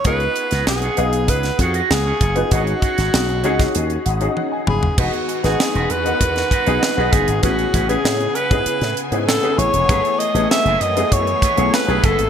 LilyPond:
<<
  \new Staff \with { instrumentName = "Alto saxophone" } { \time 4/4 \key e \major \tempo 4 = 98 b'4 gis'4 b'8 fis'8 gis'4 | fis'2. r8 gis'8 | fis'8. gis'8. b'2 gis'8 | fis'8. gis'8. b'4 r8 a'8 cis''8~ |
cis''8 dis''8 e''8 dis''8 cis''4 b'8 a'8 | }
  \new Staff \with { instrumentName = "Clean electric guitar" } { \time 4/4 \key e \major <b eis' gis' cis''>16 r8 <b eis' gis' dis''>16 r16 <b eis' gis' cis''>16 r4 <b eis' gis' cis''>16 <b eis' gis' dis''>16 r16 <b eis' gis' cis''>16 <b eis' gis' cis''>16 r16 | <cis' fis' gis' cis''>16 r16 <cis' fis' gis' cis''>16 <cis' fis' gis' cis''>16 r8 <cis' fis' gis' cis''>16 r2 r16 | <gis dis' fis' b'>16 r8 <gis dis' fis' cis''>16 r16 <gis dis' fis' b'>16 r4 <gis dis' fis' b'>16 <gis dis' fis' cis''>16 r16 <gis dis' fis' b'>16 <gis dis' fis' b'>16 r16 | <gis cis' e' b'>16 r16 <gis cis' e' b'>16 <gis cis' e' b'>16 r8 <gis cis' e' b'>16 r2 r16 |
<a e' gis' b'>16 r8 <a e' gis' cis''>16 r16 <a e' gis' b'>16 r4 <a e' gis' b'>16 <a e' gis' cis''>16 r16 <a e' gis' b'>16 <a e' gis' b'>16 r16 | }
  \new Staff \with { instrumentName = "Grand piano" } { \time 4/4 \key e \major << { r1 | r2 r8 fis''8 fis''16 gis''16 b''8 | r1 | r1 |
r1 | } \\ { <b dis' eis' gis'>4~ <b dis' eis' gis'>16 r16 <b dis' gis' eis''>4.~ <b dis' gis' eis''>16 r8 <b dis' eis' b'>16 | <cis' dis' fis' gis'>4~ <cis' dis' fis' gis'>16 r16 <cis' dis' fis' gis'>4 r16 <cis' dis' fis' gis'>4 r16 | <b dis' fis' gis'>8. <b dis' fis' b'>4 <b dis' fis' ais' b'>4 <b dis' fis' gis'>8 <b dis' fis' gis'>8. | <b cis' e' gis'>8. <b cis' e' gis'>4 <b cis' e' gis'>4 <b cis' e' gis'>8 <b cis' e' gis'>8. |
<a b e' gis'>8. <a b e' gis'>4 <a b e' gis'>4 <a b e' gis'>8 <a b e' gis'>8. | } >> }
  \new Staff \with { instrumentName = "String section" } { \clef bass \time 4/4 \key e \major << { r1 | r1 | <gis fis'>1 | <b gis''>1~ |
<b gis''>1 | } \\ { r1 | r1 | dis1 | cis1 |
<e a>1 | } >> }
  \new Staff \with { instrumentName = "Slap bass" } { \clef bass \time 4/4 \key e \major cis,8 r16 cis,16 b,,8 b,,8 cis,8 eis,8 cis,8 fis,,8 | gis,,8 r16 gis,,16 b,,8 cis,8 dis,8 gis,,8 r8 fis,,8 | e,,16 r8 gis,,16 r16 e,,16 e,8 e,8 r16 b,,16 r16 b,,16 fis,,16 gis,,16 | a,,8 a,,8 a,8 r16 gis,16 r16 a,16 r16 gis,16 a,16 r16 a,,16 e,,16 |
fis,,16 r8 a,,16 r16 fis,,16 fis,8 fis,8 r16 b,,16 r16 b,,16 fis,,16 gis,,16 | }
  \new DrumStaff \with { instrumentName = "Drums" } \drummode { \time 4/4 <hh bd>16 hh16 hh16 <hh sn>16 sn16 hh16 hh16 hh16 <hh bd>16 <hh sn>16 <hh bd>16 hh16 sn8 <hh bd>16 hh16 | <hh bd>16 hh16 <hh bd>16 <hh sn>16 sn16 hh16 hh16 <hh bd sn>16 hh16 hh16 hh16 hh16 tommh8 toml16 tomfh16 | <cymc bd>16 hh16 hh16 <hh sn>16 sn16 hh16 hh16 hh16 <hh bd>16 <hh sn>16 <hh bd>16 hh16 sn8 <hh bd>16 hh16 | <hh bd>16 hh16 <hh bd>16 hh16 sn16 hh16 hh16 <hh bd>16 hh16 <hh sn>16 hh16 hh16 sn16 hh16 hh16 hh16 |
<hh bd>16 hh16 hh16 hh16 sn16 hh16 hh16 hh16 <hh bd>16 hh16 <hh bd>16 hh16 sn16 hh16 <hh bd>16 hh16 | }
>>